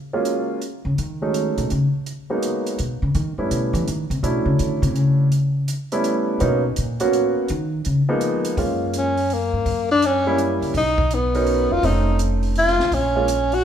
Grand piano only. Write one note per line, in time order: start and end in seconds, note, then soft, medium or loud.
0.13 0.59 F#3 medium
0.13 0.59 G#3 soft
0.13 0.59 A#3 soft
0.13 0.59 C#4 medium
0.13 0.59 F4 medium
1.22 1.68 F#3 medium
1.22 1.68 G#3 soft
1.22 1.68 A3 soft
1.22 1.68 C#4 soft
1.22 1.68 D#4 medium
2.30 2.76 F#3 medium
2.30 2.76 G#3 soft
2.30 2.76 A#3 soft
2.30 2.76 B3 soft
2.30 2.76 D#4 medium
3.38 3.84 G3 soft
3.38 3.84 A3 soft
3.38 3.84 B3 soft
3.38 3.85 C#4 soft
3.38 3.85 E4 medium
4.23 5.24 F#3 medium
4.23 5.24 A3 soft
4.23 5.24 C#4 soft
4.23 5.24 D4 soft
4.23 5.24 E4 medium
5.92 6.38 G3 medium
5.92 6.38 A3 medium
5.92 6.38 B3 medium
5.92 6.38 C#4 medium
5.92 6.38 E4 medium
6.40 6.61 F#3 medium
6.40 6.61 A#3 medium
6.40 6.62 B3 medium
6.40 6.62 C#4 medium
6.40 6.62 D#4 medium
7.00 7.46 F#3 medium
7.00 7.46 A#3 medium
7.00 7.46 B3 medium
7.00 7.46 C#4 medium
7.00 7.46 F#4 medium
8.09 8.55 F3 medium
8.09 8.55 G#3 medium
8.09 8.55 A#3 medium
8.09 8.55 B3 medium
8.09 8.55 D#4 medium
8.57 9.12 G#3 soft
8.57 9.13 A#3 soft
8.57 9.13 C#4 soft
8.57 9.13 F4 medium
10.26 10.72 G3 medium
10.26 10.72 A#3 medium
10.26 10.72 C#4 medium
10.26 10.73 E4 medium
11.35 11.81 F#3 medium
11.35 11.81 C#4 medium
11.35 11.81 D#4 medium
11.35 11.81 A#4 medium
11.84 12.85 A3 medium
11.84 12.85 C4 medium
11.84 12.85 C#4 medium
11.84 12.85 D#4 medium
13.15 13.27 G#3 medium
13.15 13.27 A#3 soft
13.15 13.27 C#4 medium
13.15 13.27 F4 medium